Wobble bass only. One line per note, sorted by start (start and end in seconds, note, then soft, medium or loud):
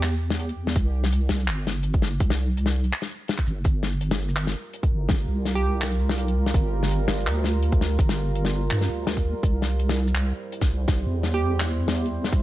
0.00 0.75 E2 medium
0.76 1.29 C2 loud
1.30 1.50 C2 medium
1.48 2.19 G1 loud
2.20 2.92 C2 loud
3.47 3.64 G1 medium
3.65 4.54 G1 loud
4.91 5.08 G1 medium
5.09 5.26 G1 loud
5.28 6.53 C2 medium
6.54 7.07 G1 loud
7.08 7.28 G1 medium
7.26 7.98 D2 loud
7.99 8.70 G1 loud
8.71 8.89 G2 medium
8.89 9.34 D2 loud
9.43 10.33 C2 loud
10.70 10.87 C2 medium
10.88 11.05 C2 loud
11.06 12.32 E2 medium
12.33 12.43 C2 loud